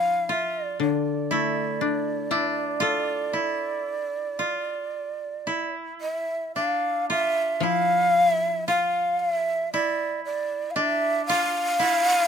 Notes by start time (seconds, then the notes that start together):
Already playing: F3 D4 E4 F5
0.29 F4 E5
0.64 D5
0.80 D3 D5
1.31 A3 E4
1.81 D4
2.31 D4 E4
2.80 F4 A4
3.33 E4
4.39 F4
5.47 E4
6.01 E5
6.55 D4 F5
7.10 F4 E5
7.60 F3 E4 F5
8.24 E5
8.68 F4 F5
9.19 F5
9.30 E5
9.73 E4 D5
10.25 D5
10.71 F5
10.75 D4 E5
11.26 F4 F5
11.79 E4